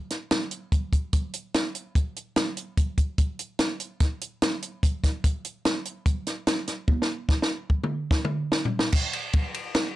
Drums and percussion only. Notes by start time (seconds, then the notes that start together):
0.10 snare, closed hi-hat
0.31 snare, closed hi-hat
0.51 closed hi-hat
0.72 kick, closed hi-hat
0.93 kick, closed hi-hat
1.13 kick, closed hi-hat
1.34 closed hi-hat
1.54 snare, closed hi-hat
1.75 closed hi-hat
1.95 kick, closed hi-hat
2.16 closed hi-hat
2.36 snare, closed hi-hat
2.57 closed hi-hat
2.77 kick, closed hi-hat
2.98 kick, closed hi-hat
3.18 kick, closed hi-hat
3.39 closed hi-hat
3.59 snare, closed hi-hat
3.80 closed hi-hat
4.00 kick, snare, closed hi-hat
4.21 closed hi-hat
4.42 snare, closed hi-hat
4.62 closed hi-hat
4.83 kick, closed hi-hat
5.04 kick, snare, closed hi-hat
5.24 kick, closed hi-hat
5.45 closed hi-hat
5.65 snare, closed hi-hat
5.85 closed hi-hat
6.06 kick, closed hi-hat
6.27 snare, closed hi-hat
6.47 snare, closed hi-hat
6.68 snare, closed hi-hat
6.88 kick, high tom
7.02 snare
7.29 kick, snare
7.42 snare
7.70 kick
7.84 mid tom
8.11 kick, snare
8.25 mid tom
8.52 snare
8.65 floor tom
8.79 snare
8.92 kick, crash
9.13 ride
9.33 kick, ride
9.54 ride
9.75 snare, ride